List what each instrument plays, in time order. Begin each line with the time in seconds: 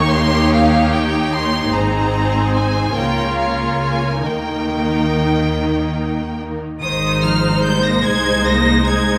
Already playing: double bass section D#2, cello section D#2, viola section A#3 D#4, violin section G4 C#5 C#6
0.13 violin section C6
0.53 violin section F5
0.93 violin section G5
1.32 violin section C6
1.71 double bass section G#1, cello section G#2, viola section C4, violin section G#4 C5 A#5
2.53 violin section G#5
2.95 double bass section C#2, cello section C#3, viola section A#3 F4, violin section A#4 C#5 G5
3.38 violin section F5
3.80 violin section G#5
4.21 double bass section D#2, cello section D#3, viola section D#4, violin section A#4 G5
6.80 double bass section G#1, cello section D#3, viola section G#3 D#4, violin section C5 D#6
7.22 cello section F3, violin section F6
7.62 cello section G3, violin section G6
7.84 cello section A#3, violin section A#6
8.04 double bass section C2, cello section G#3, viola section D#4, violin section G#6
8.45 cello section A#3, violin section A#6
8.85 cello section G#3, violin section G#6